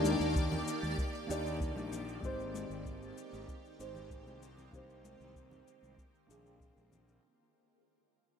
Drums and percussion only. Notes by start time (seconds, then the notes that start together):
0.04 high conga, shaker
0.21 shaker
0.36 kick, shaker
0.52 low conga, shaker
0.67 shaker
0.83 high conga, shaker
0.98 kick, shaker
1.15 shaker
1.30 shaker
1.46 shaker
1.60 kick, shaker
1.77 high conga, shaker
1.92 low conga, shaker
2.08 shaker
2.23 kick, shaker
2.40 shaker
2.54 high conga, shaker
2.71 shaker
2.86 kick, shaker
3.02 shaker
3.17 shaker
3.33 high conga, shaker
3.48 kick, shaker
3.65 shaker
3.80 shaker
3.95 low conga, shaker
4.10 kick, shaker
4.27 high conga, shaker
4.42 shaker
4.57 low conga, shaker
4.73 kick, shaker
4.90 shaker
5.04 high conga, shaker
5.21 shaker
5.35 kick, shaker
5.51 low conga, shaker
5.68 shaker
5.83 high conga, shaker
5.98 kick, shaker
6.15 shaker
6.30 shaker
6.46 shaker
6.60 kick, shaker
6.77 high conga, shaker
6.92 low conga, shaker
7.08 shaker